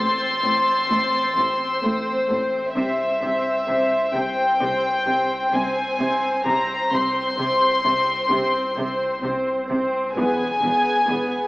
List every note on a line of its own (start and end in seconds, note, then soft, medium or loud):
0.00 2.77 A1 medium
0.00 0.25 A2 soft
0.00 0.41 C4 soft
0.00 0.41 C5 soft
0.00 1.83 C6 medium
0.00 2.25 E6 soft
0.00 1.34 A6 soft
0.42 0.52 A1 soft
0.42 0.51 A2 soft
0.42 0.72 A2 soft
0.42 0.89 C4 soft
0.42 0.88 C5 soft
0.89 0.99 A1 soft
0.89 1.17 A2 soft
0.89 0.98 A2 soft
0.89 1.35 C4 soft
0.89 1.36 C5 soft
1.36 1.44 A1 soft
1.36 1.64 A2 soft
1.36 1.45 A2 soft
1.36 1.82 C4 soft
1.36 1.82 C5 soft
1.82 1.91 A1 soft
1.82 1.91 A2 soft
1.82 2.11 A3 soft
1.82 2.29 C4 soft
1.82 2.75 C5 soft
1.82 2.29 C5 soft
2.29 2.37 A1 soft
2.29 2.37 A2 soft
2.29 2.56 A3 soft
2.29 2.74 C4 soft
2.29 2.75 C5 soft
2.74 2.82 C2 soft
2.74 6.46 C2 medium
2.74 2.83 C3 soft
2.74 3.03 C3 soft
2.74 3.20 C4 soft
2.74 3.20 C5 soft
2.74 4.11 E5 medium
3.21 3.29 C2 soft
3.21 3.49 C3 soft
3.21 3.30 C3 soft
3.21 3.67 C4 soft
3.21 3.67 C5 soft
3.67 3.75 C2 soft
3.67 3.95 C3 soft
3.67 3.76 C3 soft
3.67 4.12 C4 soft
3.67 4.13 C5 soft
4.13 4.21 C2 soft
4.13 4.22 C3 soft
4.13 4.42 C3 soft
4.13 4.59 C4 soft
4.13 4.60 C5 soft
4.13 5.53 G5 medium
4.60 4.69 C2 soft
4.60 4.88 C3 medium
4.60 4.69 C3 soft
4.60 5.06 C4 soft
4.60 5.06 C5 soft
5.06 5.15 C2 soft
5.06 5.34 C3 soft
5.06 5.15 C3 soft
5.06 5.51 C4 soft
5.06 5.51 C5 soft
5.53 5.61 C2 soft
5.53 5.61 C3 soft
5.53 5.97 C4 soft
5.53 5.81 C4 soft
5.53 5.98 C5 soft
5.53 6.46 G#5 medium
5.98 6.07 C2 soft
5.98 6.07 C3 soft
5.98 6.43 C4 soft
5.98 6.27 C4 soft
5.98 6.43 C5 soft
6.45 6.54 C2 soft
6.45 10.18 C2 medium
6.45 6.73 C3 soft
6.45 6.53 C3 soft
6.45 6.91 C4 soft
6.45 6.91 C5 soft
6.45 6.92 A#5 medium
6.92 7.00 C2 soft
6.92 7.00 C3 soft
6.92 7.20 C3 soft
6.92 7.37 C4 soft
6.92 7.37 C5 soft
6.92 9.23 C6 medium
7.38 7.46 C2 soft
7.38 7.65 C3 soft
7.38 7.47 C3 soft
7.38 7.84 C4 soft
7.38 7.83 C5 soft
7.84 7.92 C2 soft
7.84 8.12 C3 soft
7.84 7.92 C3 soft
7.84 8.30 C4 soft
7.84 8.30 C5 soft
8.30 8.38 C2 soft
8.30 8.58 C3 medium
8.30 8.39 C3 soft
8.30 8.76 C4 soft
8.30 8.76 C5 soft
8.77 8.85 C2 soft
8.77 9.04 C3 soft
8.77 8.85 C3 soft
8.77 9.22 C4 soft
8.77 9.21 C5 soft
9.22 9.30 C2 soft
9.22 9.32 C3 soft
9.22 9.67 C4 soft
9.22 9.51 C4 soft
9.22 9.68 C5 soft
9.69 9.77 C2 soft
9.69 9.77 C3 soft
9.69 10.14 C4 soft
9.69 9.97 C4 soft
9.69 10.15 C5 soft
10.15 10.23 E1 soft
10.15 11.47 E1 medium
10.15 10.24 E2 soft
10.15 10.44 E2 medium
10.15 10.61 B3 soft
10.15 10.60 G#4 soft
10.15 11.47 G#5 medium
10.60 10.68 E1 soft
10.60 10.90 E2 soft
10.60 10.71 E2 soft
10.60 11.07 B3 soft
10.60 11.07 G#4 soft
11.07 11.15 E1 soft
11.07 11.35 E2 soft
11.07 11.16 E2 soft
11.07 11.47 B3 soft
11.07 11.47 G#4 soft